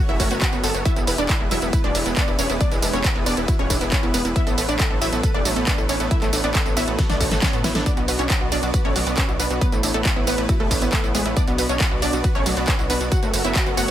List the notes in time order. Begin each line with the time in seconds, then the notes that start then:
Already playing: A3 C#4 F#4 C#5
0.09 E1 A3 E4 E5
0.20 F#1 C#4 F#4, kick, open hi-hat, tambourine
0.31 F#1 B3 F#4, closed hi-hat, tambourine
0.42 B3 F#4 F#5, kick, clap, closed hi-hat, tambourine
0.53 F#1 B3 F#4, tambourine
0.64 F#1 B3 A4 A5, open hi-hat, tambourine
0.74 F#1 B3 F#4, closed hi-hat, tambourine
0.85 G#3 B3 E4 B4 E5, kick, closed hi-hat, tambourine
0.96 E1 B3 E4, closed hi-hat, tambourine
1.07 E1 E4 B4, open hi-hat, tambourine
1.18 E1 D4 D5, closed hi-hat, tambourine
1.29 E4, kick, clap, closed hi-hat, tambourine
1.40 E1 B3 E4
1.51 E1 F#3 E4 E5, open hi-hat, tambourine
1.62 E1 B3 E4, closed hi-hat, tambourine
1.73 E4 B4, kick, closed hi-hat, tambourine
1.84 D1 G#3 D4 D5
1.95 E1 F#3 E4, open hi-hat, tambourine
2.06 E1 B3 E4, closed hi-hat, tambourine
2.17 D4 B4 D5, kick, clap, closed hi-hat, tambourine
2.28 E1 E4, tambourine
2.39 E1 C#4 D4 C#5, open hi-hat, tambourine
2.50 E1 B3 E4, closed hi-hat, tambourine
2.61 F#3 D4 D5, kick, closed hi-hat, tambourine
2.71 E1 G#3 E4, closed hi-hat, tambourine
2.82 E1 D4 E4, open hi-hat, tambourine
2.93 E1 B3 C#4 C#5, closed hi-hat, tambourine
3.04 E4 B4, kick, clap, closed hi-hat, tambourine
3.15 E1 B3 E4
3.26 E1 B3 D4 D5, open hi-hat, tambourine
3.37 E1 B3 E4, closed hi-hat, tambourine
3.48 E4 F#4, kick, closed hi-hat, tambourine
3.59 D1 G#3 C#4 C#5
3.70 E1 D4 E4, kick, open hi-hat, tambourine
3.81 E1 B3 E4, closed hi-hat, tambourine
3.92 B3 C#4 C#5, kick, clap, closed hi-hat, tambourine
4.03 E1 B3 E4, tambourine
4.14 E1 B3 B4, open hi-hat, tambourine
4.25 E1 B3 E4, closed hi-hat, tambourine
4.36 A3 B3 E4 E5, kick, closed hi-hat, tambourine
4.47 A1 B3 A4, closed hi-hat, tambourine
4.58 A1 A4 B4, open hi-hat, tambourine
4.69 A1 D4 D5, closed hi-hat, tambourine
4.80 E4 A4, kick, clap, closed hi-hat, tambourine
4.91 A1 B3 A4
5.01 A1 F#3 E4 E5, open hi-hat, tambourine
5.12 A1 B3 A4, closed hi-hat, tambourine
5.23 A4 B4, kick, closed hi-hat, tambourine
5.34 E1 A3 D4 D5
5.45 A1 F#3 A4, open hi-hat, tambourine
5.56 A1 B3 A4, closed hi-hat, tambourine
5.67 D4 B4 D5, kick, clap, closed hi-hat, tambourine
5.78 A1 E4 A4, tambourine
5.89 A1 C#4 D4 C#5, open hi-hat, tambourine
6.00 A1 B3 A4, closed hi-hat, tambourine
6.11 F#3 E4 F#4 E5, kick, closed hi-hat, tambourine
6.22 A1 A3 A4, clap, closed hi-hat, tambourine
6.33 A1 D4 A4, open hi-hat, tambourine
6.44 A1 B3 D4 D5, closed hi-hat, tambourine
6.55 A4 B4, kick, clap, closed hi-hat, tambourine
6.66 A1 B3 A4, tambourine
6.77 A1 B3 E4 E5, open hi-hat, tambourine
6.88 A1 B3 A4, closed hi-hat, tambourine
6.99 F#4 A4, kick, snare, closed hi-hat, tambourine
7.10 B1 A3 D4 D5, snare, closed hi-hat, tambourine
7.20 A1 B2 A4, kick, open hi-hat, tambourine
7.31 A1 A3 A4, snare, closed hi-hat, tambourine
7.42 B3 C#4 C#5, kick, snare, clap, closed hi-hat, tambourine
7.53 A2 B3 A4, closed hi-hat, tambourine
7.64 A1 B3 E4 B4, snare, open hi-hat, tambourine
7.75 A1 D4 A4, snare, closed hi-hat, tambourine
7.86 B3 D4 D5, kick, closed hi-hat, tambourine
7.97 B1 B3 F#4, closed hi-hat, tambourine
8.08 B1 F#4 B4, open hi-hat, tambourine
8.19 B1 C#4 D4 C#5, closed hi-hat, tambourine
8.30 E4 F#4, kick, clap, closed hi-hat, tambourine
8.41 B1 B3 F#4
8.52 B1 F#3 D4 D5, open hi-hat, tambourine
8.63 B1 B3 F#4, closed hi-hat, tambourine
8.74 F#4 B4, kick, closed hi-hat, tambourine
8.85 A1 A3 C#4 C#5
8.96 B1 F#3 F#4, open hi-hat, tambourine
9.07 B1 B3 F#4, closed hi-hat, tambourine
9.18 C#4 B4 C#5, kick, clap, closed hi-hat, tambourine
9.29 B1 E4 F#4, tambourine
9.39 B1 B3 D4 B4, open hi-hat, tambourine
9.50 B1 B3 F#4, closed hi-hat, tambourine
9.61 F#3 A3 B3 E4 B4, kick, closed hi-hat, tambourine
9.72 A1 A3 E4, closed hi-hat, tambourine
9.83 A1 D4 E4, open hi-hat, tambourine
9.94 A1 A3 B3 A4, closed hi-hat
10.05 E4 B4, kick, clap, closed hi-hat, tambourine
10.16 A1 B3 E4
10.27 A1 B3 B4, open hi-hat, tambourine
10.38 A1 B3 E4, closed hi-hat, tambourine
10.49 E4 F#4, kick, closed hi-hat, tambourine
10.60 E1 A3 A4
10.71 A1 D4 E4, kick, open hi-hat, tambourine
10.82 A1 B3 E4, closed hi-hat, tambourine
10.93 A3 B3 A4, kick, clap, closed hi-hat, tambourine
11.04 A1 B3 E4, tambourine
11.15 A1 G#3 B3 G#4, open hi-hat, tambourine
11.26 A1 B3 E4, closed hi-hat, tambourine
11.36 B3 D4 F#4 D5, kick, closed hi-hat, tambourine
11.47 B1 B3 F#4, closed hi-hat, tambourine
11.58 B1 F#4 B4, open hi-hat, tambourine
11.69 B1 C#4 D4 C#5, closed hi-hat, tambourine
11.80 E4 F#4, kick, clap, closed hi-hat, tambourine
11.91 B1 B3 F#4
12.02 B1 F#3 D4 D5, open hi-hat, tambourine
12.13 B1 B3 F#4, closed hi-hat, tambourine
12.24 F#4 B4, kick, closed hi-hat, tambourine
12.35 A1 A3 C#4 C#5
12.46 B1 F#3 F#4, open hi-hat, tambourine
12.57 B1 B3 F#4, closed hi-hat, tambourine
12.68 C#4 B4 C#5, kick, clap, closed hi-hat, tambourine
12.79 B1 E4 F#4, tambourine
12.90 B1 B3 D4 B4, open hi-hat, tambourine
13.01 B1 B3 F#4, closed hi-hat, tambourine
13.12 F#3 A3 C#4 F#4 C#5 F#5, kick, closed hi-hat, tambourine
13.23 F#1 A3 F#4, closed hi-hat, tambourine
13.33 F#1 C#4 F#4, open hi-hat, tambourine
13.44 F#1 B3 E4 E5, closed hi-hat, tambourine
13.55 F#4 B4, kick, clap, closed hi-hat, tambourine
13.66 F#1 B3 F#4, tambourine
13.77 F#1 B3 F#4 F#5, open hi-hat, tambourine